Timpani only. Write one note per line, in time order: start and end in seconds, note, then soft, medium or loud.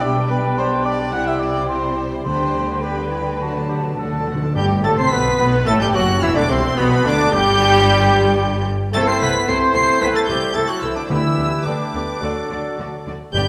2.26 3.09 D3 medium
3.41 3.48 D3 soft
3.49 3.55 D3 soft
3.56 3.64 D3 soft
3.65 3.71 D3 soft
3.73 3.79 D3 soft
3.88 3.94 D3 medium
3.95 4.02 D3 medium
4.03 4.10 D3 medium
4.12 4.18 D3 medium
4.19 4.26 D3 medium
4.27 4.33 D3 medium
4.35 4.41 D3 medium
4.42 4.50 D3 medium
4.56 5.35 G2 medium
11.10 11.90 D3 loud
13.34 13.48 G2 loud